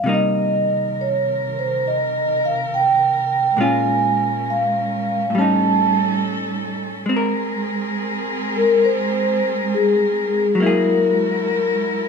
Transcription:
Already playing: F5
0.04 C3 D#3 G3 A#3 A#4
0.09 D#4
0.14 D#5
1.01 C#5
1.59 C5
1.87 D#5
2.45 F5
2.74 G5
3.57 A#2 G#3 C#4 F4
3.62 G#5
4.50 F5
5.30 A2 D#4 A4
5.34 G3 C#4
5.39 D#4 A5
7.05 G#3 C4 G#4 A#4
7.09 C4
7.16 A#4
8.56 A#4
8.85 C5
9.74 G#4
10.55 F#3 E4 F#4 A#4
10.60 A#3 E4 A#4
10.66 G#4

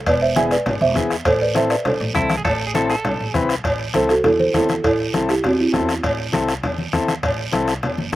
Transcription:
0.06 E1 B4 D5, bombo low, bombo rim, cowbell, high conga, long guiro
0.22 C5 E5
0.36 B3 E4 G#4 E5 G#5, bombo rim, high conga, short guiro
0.51 B4 D5, bombo rim, short guiro
0.66 G#1, bombo rim, cowbell, high conga, low conga, long guiro
0.81 E1 C5 E5, high conga
0.95 E2 B3 E4 G#4, bombo low, bombo rim, high conga, low conga, short guiro
1.10 bombo rim, short guiro
1.25 A1 A4 C5, bombo low, bombo rim, cowbell, high conga, long guiro
1.41 B4 D5
1.54 C4 E4 A4 C5 E5, bombo rim, high conga, short guiro
1.70 B4 D5, bombo rim, short guiro
1.85 C2 A4 C5, bombo rim, cowbell, high conga, low conga, long guiro
2.00 A1
2.14 C2 C4 E4 A4, bombo low, bombo rim, high conga, short guiro
2.30 bombo rim, high conga, short guiro
2.37 G#4
2.45 A1 A4, bombo low, bombo rim, cowbell, high conga, long guiro
2.67 G#4
2.74 C4 E4 A4, bombo rim, high conga, short guiro
2.90 A4, bombo rim, short guiro
3.05 C2, bombo rim, cowbell, high conga, low conga, long guiro
3.20 A1
3.30 C4 G#4
3.34 C2 E4 B4, bombo low, bombo rim, high conga, short guiro
3.49 bombo rim, short guiro
3.64 A1, bombo low, bombo rim, cowbell, high conga, long guiro
3.94 C2 C4 E4 A4 C5, bombo rim, high conga, short guiro
4.09 F#4 A4, bombo rim, short guiro
4.24 E2 E4 A4, bombo rim, cowbell, high conga, low conga, long guiro
4.40 A4 C5, high conga
4.54 E2 C4 E4 A4, bombo low, bombo rim, high conga, low timbale, short guiro
4.69 bombo rim, high conga, short guiro
4.84 A1 E4 A4, bombo low, bombo rim, cowbell, long guiro
5.13 C2 C4 E4 A4, bombo rim, high conga, short guiro
5.29 E4 G4, bombo rim, short guiro
5.44 E2 C4 F#4, bombo rim, cowbell, high conga, low conga, long guiro
5.61 C4 E4
5.73 E2 C4 E4 A4, bombo low, bombo rim, high conga, low conga, low timbale, short guiro
5.89 bombo rim, short guiro
6.03 A1, bombo low, bombo rim, cowbell, high conga, long guiro
6.33 C2 C4 E4 A4, bombo rim, high conga, short guiro
6.48 bombo rim, short guiro
6.63 E2, bombo rim, cowbell, high conga, low conga, long guiro
6.78 high conga
6.93 E2 C4 E4 A4, bombo low, bombo rim, high conga, short guiro
7.08 bombo rim, high conga, short guiro
7.23 A1, bombo low, bombo rim, cowbell, high conga, low conga, long guiro
7.52 C2 C4 E4 A4, bombo rim, high conga, short guiro
7.68 bombo rim, short guiro
7.83 E2, bombo rim, cowbell, high conga, low conga, long guiro
7.98 F#1, high conga

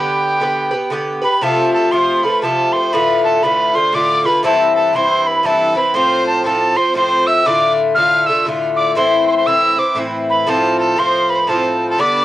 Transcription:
Already playing: D3 B3 G4 B4 G5
0.40 D3 B3 G4 B4
0.71 B3 G4 B4
0.90 D3 B3 G4 B4
1.21 B3 G4 B4 B5
1.41 C3 F3 A3 F4 A4 A5
1.74 A4 A5
1.91 C3 F3 A3 F4 C5 C6
2.23 F3 A3 F4 B4 B5
2.42 C3 F3 A3 F4 A4 A5
2.73 C5 C6
2.93 A2 D3 A3 F4 B4 B5
3.24 A4 A5
3.43 A2 D3 A3 F4 B4 B5
3.73 D3 A3 F4 C5 C6
3.93 A2 D3 A3 F4 D5 D6
4.24 D3 A3 F4 B4 B5
4.43 G2 E3 C4 E4 A4 A5
4.75 A4 A5
4.93 G2 E3 C4 E4 C5 C6
5.26 B4 B5
5.43 G2 E3 C4 E4 A4 A5
5.74 E3 C4 E4 B4 B5
5.94 A2 F3 C4 F4 C5 C6
6.27 A5
6.44 A2 F3 C4 F4 A4 A5
6.75 F3 C4 F4 C5 C6
6.94 A2 F3 C4 F4 C5 C6
7.27 E5 E6
7.45 A2 D3 A3 F4 D5 D6
7.95 A2 D3 A3 F4 F5 F6
8.26 D3 A3 F4 E5 E6
8.45 A2 D3 A3 F4
8.76 D5 D6
8.95 A2 E3 C4 E4 C5 C6
9.28 C5 C6
9.32 C6
9.37 C5 C6
9.46 A2 E3 C4 E4 E5 E6
9.76 E3 C4 E4 D6
9.95 A2 E3 C4 E4
10.30 B4 B5
10.47 A2 F3 C4 F4 A4 A5
10.79 A4 A5
10.96 A2 F3 C4 F4 C5 C6
11.29 B4 B5
11.35 C5
11.40 B4
11.47 A2 F3 C4 F4 A4 A5
11.90 A4 A5
11.98 G2 D3 B3 D4 D5 D6

